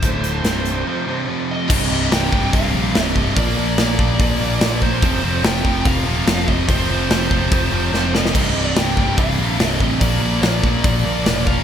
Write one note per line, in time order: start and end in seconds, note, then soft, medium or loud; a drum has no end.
0.00 0.42 D1 medium
0.00 0.44 D2 loud
0.00 0.44 A2 loud
0.00 0.45 D3 loud
0.00 1.24 C5 medium
0.00 kick loud
0.00 closed hi-hat medium
0.24 closed hi-hat medium
0.44 0.83 C1 medium
0.44 0.86 C2 medium
0.44 0.86 G2 medium
0.44 0.86 C3 medium
0.44 snare loud
0.44 closed hi-hat medium
0.65 closed hi-hat medium
0.86 1.06 F2 medium
0.86 1.07 C3 medium
0.86 1.07 F3 loud
1.07 1.27 C2 medium
1.07 1.28 G2 medium
1.07 1.27 C3 loud
1.28 1.69 F2 medium
1.28 1.69 C3 loud
1.28 1.70 F3 loud
1.51 2.14 D#5 medium
1.70 1.89 C1 loud
1.70 1.89 C2 loud
1.70 1.90 G2 loud
1.70 1.91 C3 loud
1.70 kick loud
1.70 crash loud
1.90 2.10 C1 loud
1.90 2.10 C2 medium
1.90 2.11 G2 medium
1.90 2.11 C3 medium
2.11 2.31 C1 medium
2.11 2.31 C2 medium
2.11 2.32 G2 medium
2.11 2.32 C3 medium
2.11 2.54 G5 loud
2.11 snare loud
2.11 open hi-hat medium
2.32 2.52 C1 loud
2.32 2.51 C2 medium
2.32 2.52 G2 medium
2.32 2.53 C3 loud
2.32 kick medium
2.53 2.73 C1 medium
2.53 2.72 C2 medium
2.53 2.73 G2 loud
2.53 2.73 C3 loud
2.53 3.03 F5 medium
2.53 kick loud
2.53 open hi-hat medium
2.73 2.93 A#1 loud
2.73 2.94 C2 medium
2.73 2.94 G2 loud
2.73 2.95 C3 loud
2.95 3.15 C1 loud
2.95 3.14 C2 loud
2.95 3.15 G2 loud
2.95 3.16 C3 loud
2.95 snare loud
2.95 open hi-hat medium
3.03 3.17 D#5 medium
3.15 3.38 C1 medium
3.15 3.35 C2 medium
3.15 3.35 G2 medium
3.15 3.36 C3 medium
3.15 3.36 D#5 medium
3.15 kick medium
3.36 3.56 A#1 loud
3.36 3.56 A#2 loud
3.36 3.58 F3 loud
3.36 3.58 A#3 loud
3.36 3.78 D5 medium
3.36 kick loud
3.36 open hi-hat medium
3.57 3.77 A#1 loud
3.57 3.76 A#2 medium
3.57 3.78 F3 medium
3.57 3.77 A#3 medium
3.78 3.98 A#1 medium
3.78 3.97 A#2 medium
3.78 3.99 F3 medium
3.78 3.98 A#3 loud
3.78 4.81 D5 medium
3.78 snare loud
3.78 open hi-hat medium
3.98 4.18 A#1 loud
3.98 4.18 A#2 medium
3.98 4.20 F3 loud
3.98 4.19 A#3 medium
3.98 kick medium
4.19 4.39 A#1 medium
4.19 4.38 A#2 loud
4.19 4.40 F3 loud
4.19 4.39 A#3 loud
4.19 kick loud
4.19 open hi-hat medium
4.39 4.60 A#1 medium
4.39 4.60 A#2 medium
4.39 4.61 F3 medium
4.39 4.61 A#3 loud
4.61 5.00 A#1 loud
4.61 4.80 A#2 loud
4.61 4.81 F3 loud
4.61 4.81 A#3 loud
4.61 snare loud
4.61 open hi-hat medium
4.81 5.01 A#2 medium
4.81 5.02 F3 medium
4.81 5.02 A#3 medium
4.81 5.46 C5 medium
4.81 kick medium
5.02 5.22 F1 loud
5.02 5.22 F2 loud
5.02 5.21 C3 loud
5.02 5.23 F3 loud
5.02 kick loud
5.02 open hi-hat medium
5.22 5.43 F1 medium
5.22 5.42 F2 medium
5.22 5.42 C3 medium
5.22 5.44 F3 medium
5.43 5.64 F1 medium
5.43 5.64 F2 medium
5.43 5.63 C3 medium
5.43 5.65 F3 loud
5.43 5.86 G5 medium
5.43 snare loud
5.43 open hi-hat medium
5.64 5.84 F1 medium
5.64 5.84 F2 medium
5.64 5.84 C3 medium
5.64 5.85 F3 loud
5.64 kick medium
5.85 6.05 F1 medium
5.85 6.05 F2 loud
5.85 6.05 C3 loud
5.85 6.06 F3 loud
5.85 6.51 F5 loud
5.85 kick loud
5.85 open hi-hat medium
6.06 6.26 D#1 medium
6.06 6.26 F2 loud
6.06 6.26 C3 medium
6.06 6.27 F3 loud
6.27 6.47 F1 loud
6.27 6.46 F2 loud
6.27 6.46 C3 loud
6.27 6.47 F3 loud
6.27 snare loud
6.27 open hi-hat medium
6.47 6.68 F1 medium
6.47 6.67 F2 medium
6.47 6.68 C3 loud
6.47 6.69 F3 medium
6.47 6.69 D#5 medium
6.47 kick medium
6.69 6.89 F1 loud
6.69 6.88 F2 loud
6.69 6.89 C3 loud
6.69 6.89 F3 loud
6.69 7.08 C5 loud
6.69 kick loud
6.69 open hi-hat medium
6.89 7.09 F1 medium
6.89 7.09 F2 medium
6.89 7.09 C3 medium
6.89 7.10 F3 loud
7.10 7.30 F1 medium
7.10 7.30 F2 medium
7.10 7.31 C3 medium
7.10 7.31 F3 loud
7.10 8.14 C5 medium
7.10 snare loud
7.10 open hi-hat medium
7.31 7.51 F1 medium
7.31 7.51 F2 medium
7.31 7.52 C3 medium
7.31 7.52 F3 medium
7.31 kick medium
7.52 7.72 F1 medium
7.52 7.71 F2 loud
7.52 7.72 C3 loud
7.52 7.73 F3 loud
7.52 kick loud
7.52 open hi-hat medium
7.72 7.92 F1 medium
7.72 7.92 F2 medium
7.72 7.93 C3 medium
7.72 7.94 F3 loud
7.93 8.33 F1 loud
7.93 8.13 F2 loud
7.93 8.14 C3 loud
7.93 8.14 F3 loud
7.93 snare medium
8.14 8.34 F2 medium
8.14 8.34 C3 medium
8.14 8.34 F3 medium
8.14 8.61 D#5 loud
8.14 snare loud
8.26 snare medium
8.35 8.55 C1 loud
8.35 8.55 C2 loud
8.35 8.56 G2 loud
8.35 8.56 C3 loud
8.35 kick loud
8.35 crash loud
8.55 8.75 C1 loud
8.55 8.75 C2 medium
8.55 8.76 G2 medium
8.55 8.76 C3 medium
8.61 8.79 D5 loud
8.76 8.96 C1 medium
8.76 8.96 C2 medium
8.76 8.97 G2 medium
8.76 8.97 C3 loud
8.76 9.19 G5 loud
8.76 snare loud
8.76 open hi-hat medium
8.97 9.17 C1 medium
8.97 9.16 C2 medium
8.97 9.17 G2 medium
8.97 9.17 C3 medium
8.97 kick medium
9.17 9.38 C1 loud
9.17 9.38 C2 medium
9.17 9.38 G2 medium
9.17 9.39 C3 loud
9.17 9.68 F5 loud
9.17 kick loud
9.17 open hi-hat medium
9.39 9.58 A#1 medium
9.39 9.59 C2 medium
9.39 9.59 G2 medium
9.39 9.60 C3 medium
9.59 9.79 C1 loud
9.59 9.79 C2 loud
9.59 9.80 G2 loud
9.59 9.80 C3 loud
9.59 snare loud
9.59 open hi-hat medium
9.68 9.80 D#5 loud
9.80 10.00 A1 medium
9.80 10.00 C2 medium
9.80 10.01 G2 medium
9.80 10.01 C3 medium
9.80 10.00 D#5 medium
9.80 kick medium
10.00 10.21 A#1 loud
10.00 10.21 A#2 loud
10.00 10.22 F3 loud
10.00 10.22 A#3 loud
10.00 10.40 D5 loud
10.00 kick loud
10.00 open hi-hat medium
10.21 10.41 A#1 medium
10.21 10.42 A#2 medium
10.21 10.43 F3 medium
10.21 10.43 A#3 loud
10.42 10.62 A#1 medium
10.42 10.63 A#2 medium
10.42 10.64 F3 medium
10.42 10.64 A#3 loud
10.42 11.50 D5 medium
10.42 snare loud
10.42 open hi-hat medium
10.63 10.83 A#1 loud
10.63 10.83 A#2 medium
10.63 10.83 F3 medium
10.63 10.84 A#3 loud
10.63 kick medium
10.84 11.04 A#1 medium
10.84 11.04 A#2 loud
10.84 11.04 F3 loud
10.84 11.05 A#3 loud
10.84 kick loud
10.84 open hi-hat medium
11.05 11.25 A#1 medium
11.05 11.24 A#2 loud
11.05 11.25 F3 loud
11.05 11.25 A#3 medium
11.25 11.63 E1 loud
11.25 11.46 A#2 loud
11.25 11.46 F3 loud
11.25 11.47 A#3 loud
11.25 snare loud
11.25 open hi-hat medium
11.47 11.63 A#2 medium
11.47 11.63 F3 medium
11.47 11.63 A#3 medium
11.47 11.63 F5 loud
11.47 kick medium